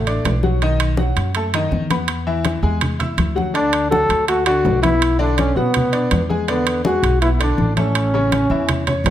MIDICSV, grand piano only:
0, 0, Header, 1, 2, 480
1, 0, Start_track
1, 0, Tempo, 366524
1, 808, Time_signature, 4, 2, 24, 8
1, 11919, End_track
2, 0, Start_track
2, 0, Title_t, "Grand piano"
2, 0, Program_c, 0, 0
2, 90, Note_on_c, 0, 62, 74
2, 93, Note_on_c, 0, 86, 80
2, 94, Note_on_c, 0, 74, 68
2, 483, Note_off_c, 0, 62, 0
2, 484, Note_off_c, 0, 86, 0
2, 485, Note_off_c, 0, 74, 0
2, 565, Note_on_c, 0, 54, 79
2, 568, Note_on_c, 0, 66, 73
2, 571, Note_on_c, 0, 78, 63
2, 763, Note_off_c, 0, 54, 0
2, 765, Note_off_c, 0, 66, 0
2, 766, Note_off_c, 0, 78, 0
2, 810, Note_on_c, 0, 51, 84
2, 815, Note_on_c, 0, 63, 79
2, 819, Note_on_c, 0, 75, 85
2, 1203, Note_off_c, 0, 51, 0
2, 1206, Note_off_c, 0, 63, 0
2, 1208, Note_off_c, 0, 75, 0
2, 1286, Note_on_c, 0, 54, 71
2, 1290, Note_on_c, 0, 66, 69
2, 1294, Note_on_c, 0, 78, 72
2, 1680, Note_off_c, 0, 54, 0
2, 1683, Note_off_c, 0, 66, 0
2, 1686, Note_off_c, 0, 78, 0
2, 1775, Note_on_c, 0, 57, 68
2, 1778, Note_on_c, 0, 69, 65
2, 1781, Note_on_c, 0, 81, 66
2, 1970, Note_off_c, 0, 57, 0
2, 1971, Note_off_c, 0, 69, 0
2, 1973, Note_off_c, 0, 81, 0
2, 2014, Note_on_c, 0, 51, 87
2, 2026, Note_on_c, 0, 63, 74
2, 2026, Note_on_c, 0, 75, 82
2, 2406, Note_off_c, 0, 51, 0
2, 2412, Note_off_c, 0, 63, 0
2, 2412, Note_off_c, 0, 75, 0
2, 2493, Note_on_c, 0, 59, 74
2, 2493, Note_on_c, 0, 71, 71
2, 2497, Note_on_c, 0, 83, 75
2, 2885, Note_off_c, 0, 59, 0
2, 2885, Note_off_c, 0, 71, 0
2, 2887, Note_off_c, 0, 83, 0
2, 2968, Note_on_c, 0, 52, 83
2, 2968, Note_on_c, 0, 64, 84
2, 2972, Note_on_c, 0, 76, 80
2, 3362, Note_off_c, 0, 52, 0
2, 3362, Note_off_c, 0, 64, 0
2, 3365, Note_off_c, 0, 76, 0
2, 3438, Note_on_c, 0, 56, 79
2, 3442, Note_on_c, 0, 68, 76
2, 3445, Note_on_c, 0, 80, 71
2, 3836, Note_off_c, 0, 56, 0
2, 3838, Note_off_c, 0, 68, 0
2, 3841, Note_off_c, 0, 80, 0
2, 3917, Note_on_c, 0, 64, 67
2, 3924, Note_on_c, 0, 76, 70
2, 3925, Note_on_c, 0, 88, 69
2, 4316, Note_off_c, 0, 64, 0
2, 4320, Note_off_c, 0, 76, 0
2, 4321, Note_off_c, 0, 88, 0
2, 4392, Note_on_c, 0, 54, 77
2, 4399, Note_on_c, 0, 66, 73
2, 4402, Note_on_c, 0, 78, 73
2, 4596, Note_off_c, 0, 54, 0
2, 4600, Note_off_c, 0, 66, 0
2, 4601, Note_off_c, 0, 78, 0
2, 4634, Note_on_c, 0, 50, 73
2, 4637, Note_on_c, 0, 62, 79
2, 4645, Note_on_c, 0, 74, 83
2, 5034, Note_off_c, 0, 50, 0
2, 5035, Note_off_c, 0, 62, 0
2, 5040, Note_off_c, 0, 74, 0
2, 5118, Note_on_c, 0, 54, 65
2, 5124, Note_on_c, 0, 66, 67
2, 5125, Note_on_c, 0, 78, 71
2, 5516, Note_off_c, 0, 54, 0
2, 5520, Note_off_c, 0, 66, 0
2, 5520, Note_off_c, 0, 78, 0
2, 5599, Note_on_c, 0, 57, 62
2, 5605, Note_on_c, 0, 69, 57
2, 5608, Note_on_c, 0, 81, 66
2, 5800, Note_off_c, 0, 57, 0
2, 5804, Note_off_c, 0, 69, 0
2, 5805, Note_off_c, 0, 81, 0
2, 5842, Note_on_c, 0, 50, 82
2, 5848, Note_on_c, 0, 62, 81
2, 5851, Note_on_c, 0, 74, 77
2, 6238, Note_off_c, 0, 50, 0
2, 6242, Note_off_c, 0, 62, 0
2, 6243, Note_off_c, 0, 74, 0
2, 6310, Note_on_c, 0, 59, 72
2, 6316, Note_on_c, 0, 71, 67
2, 6321, Note_on_c, 0, 83, 75
2, 6711, Note_off_c, 0, 59, 0
2, 6715, Note_off_c, 0, 71, 0
2, 6718, Note_off_c, 0, 83, 0
2, 6794, Note_on_c, 0, 50, 86
2, 6797, Note_on_c, 0, 62, 90
2, 6797, Note_on_c, 0, 74, 88
2, 7193, Note_off_c, 0, 50, 0
2, 7195, Note_off_c, 0, 62, 0
2, 7195, Note_off_c, 0, 74, 0
2, 7286, Note_on_c, 0, 54, 67
2, 7286, Note_on_c, 0, 66, 82
2, 7294, Note_on_c, 0, 78, 80
2, 7680, Note_off_c, 0, 54, 0
2, 7681, Note_off_c, 0, 66, 0
2, 7685, Note_off_c, 0, 78, 0
2, 7756, Note_on_c, 0, 62, 77
2, 7760, Note_on_c, 0, 74, 75
2, 7765, Note_on_c, 0, 86, 74
2, 8154, Note_off_c, 0, 62, 0
2, 8156, Note_off_c, 0, 74, 0
2, 8160, Note_off_c, 0, 86, 0
2, 8244, Note_on_c, 0, 56, 70
2, 8244, Note_on_c, 0, 68, 77
2, 8253, Note_on_c, 0, 80, 71
2, 8442, Note_off_c, 0, 56, 0
2, 8442, Note_off_c, 0, 68, 0
2, 8448, Note_off_c, 0, 80, 0
2, 8483, Note_on_c, 0, 50, 83
2, 8492, Note_on_c, 0, 62, 84
2, 8492, Note_on_c, 0, 74, 84
2, 8879, Note_off_c, 0, 50, 0
2, 8884, Note_off_c, 0, 62, 0
2, 8884, Note_off_c, 0, 74, 0
2, 8972, Note_on_c, 0, 56, 67
2, 8978, Note_on_c, 0, 68, 69
2, 8984, Note_on_c, 0, 80, 68
2, 9364, Note_off_c, 0, 56, 0
2, 9367, Note_off_c, 0, 68, 0
2, 9371, Note_off_c, 0, 80, 0
2, 9457, Note_on_c, 0, 59, 70
2, 9462, Note_on_c, 0, 71, 64
2, 9466, Note_on_c, 0, 83, 64
2, 9650, Note_off_c, 0, 59, 0
2, 9653, Note_off_c, 0, 71, 0
2, 9655, Note_off_c, 0, 83, 0
2, 9681, Note_on_c, 0, 50, 79
2, 9693, Note_on_c, 0, 62, 78
2, 9697, Note_on_c, 0, 74, 78
2, 10077, Note_off_c, 0, 50, 0
2, 10084, Note_off_c, 0, 62, 0
2, 10087, Note_off_c, 0, 74, 0
2, 10171, Note_on_c, 0, 57, 69
2, 10171, Note_on_c, 0, 69, 69
2, 10174, Note_on_c, 0, 81, 74
2, 10563, Note_off_c, 0, 57, 0
2, 10563, Note_off_c, 0, 69, 0
2, 10565, Note_off_c, 0, 81, 0
2, 10658, Note_on_c, 0, 49, 91
2, 10664, Note_on_c, 0, 61, 83
2, 10669, Note_on_c, 0, 73, 86
2, 11047, Note_off_c, 0, 49, 0
2, 11051, Note_off_c, 0, 61, 0
2, 11054, Note_off_c, 0, 73, 0
2, 11136, Note_on_c, 0, 52, 75
2, 11140, Note_on_c, 0, 64, 77
2, 11142, Note_on_c, 0, 76, 71
2, 11526, Note_off_c, 0, 52, 0
2, 11529, Note_off_c, 0, 64, 0
2, 11530, Note_off_c, 0, 76, 0
2, 11620, Note_on_c, 0, 61, 69
2, 11621, Note_on_c, 0, 73, 77
2, 11627, Note_on_c, 0, 85, 70
2, 11919, Note_off_c, 0, 61, 0
2, 11919, Note_off_c, 0, 73, 0
2, 11919, Note_off_c, 0, 85, 0
2, 11919, End_track
0, 0, End_of_file